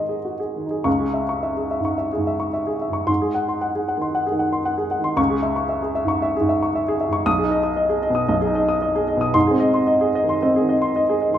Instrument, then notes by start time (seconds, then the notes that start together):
grand piano
Already playing: G#2 D#3 D#4 F#4 G#4 D#5 C6
0.09 G#4
0.25 F#4
0.40 G#4
0.56 D#3
0.66 D#4
0.70 G#4
0.84 C#2 C#6
1.00 G#4
1.14 E5
1.29 C#6
1.43 E5
1.57 G#4
1.71 E5
1.80 G#2
1.85 C#6
1.98 E5
2.13 G#4
2.17 G#2
2.27 E5
2.40 C#6
2.53 E5
2.67 G#4
2.82 E5
2.90 G#2 C#6
3.07 G#2 C6
3.22 G#4
3.35 F#5
3.48 C6
3.62 F#5
3.75 G#4
3.88 F#5
3.98 D#3 C6
4.15 F#5
4.26 G#4
4.32 D#3
4.39 F#5
4.53 C6
4.65 F#5
4.78 G#4
4.91 F#5
5.00 D#3
5.04 C6
5.17 C#2 C#6
5.30 G#4
5.43 E5
5.56 C#6
5.69 E5
5.82 G#4
5.95 E5
6.05 G#2 C#6
6.22 E5
6.37 G#4
6.41 G#2
6.49 E5
6.62 C#6
6.75 E5
6.88 G#4
7.01 E5
7.09 G#2 C#6
7.26 B1 D#6
7.38 G#4
7.43 D#4
7.51 D#5
7.63 D#6
7.76 D#5
7.89 G#4
8.02 D#5
8.10 B2
8.15 D#6
8.28 B1 D#5
8.41 G#4
8.46 D#4
8.55 D#5
8.69 D#6
8.82 D#5
8.96 G#4
9.08 D#5
9.17 B2 D#6
9.34 G#2 C6
9.47 G#4
9.51 C4
9.60 D#5
9.74 C6
9.87 D#5
10.01 G#4
10.15 D#5
10.24 D#3
10.29 C6
10.42 C4 D#5
10.56 G#4
10.60 D#3
10.69 D#5
10.82 C6
10.96 D#5
11.09 G#4
11.22 D#5
11.30 D#3
11.34 C6